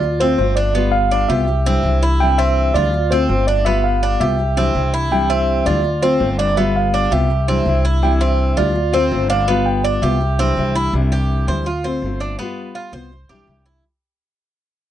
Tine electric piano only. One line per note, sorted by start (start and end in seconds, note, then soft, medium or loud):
0.00 0.17 D5 medium
0.20 0.37 C5 medium
0.38 0.57 C5 medium
0.56 0.94 D5 loud
0.92 1.26 F5 loud
1.28 1.98 E5 loud
2.20 2.39 G5 loud
2.38 2.76 E5 loud
2.74 3.12 D5 medium
3.11 3.45 C5 medium
3.47 3.65 D5 medium
3.65 3.84 E5 loud
3.84 4.22 F5 medium
4.20 4.89 E5 medium
5.12 5.31 G5 loud
5.30 5.67 E5 loud
5.66 6.04 D5 medium
6.03 6.20 C5 medium
6.21 6.29 C5 medium
6.39 6.58 D5 medium
6.57 6.76 E5 medium
6.76 7.13 F5 medium
7.12 7.81 E5 medium
8.03 8.11 G5 medium
8.21 8.55 E5 medium
8.58 8.95 D5 medium
8.94 9.31 C5 medium
9.30 9.67 F5 loud
9.66 9.83 G5 medium
9.84 10.01 D5 medium
10.02 10.53 E5 medium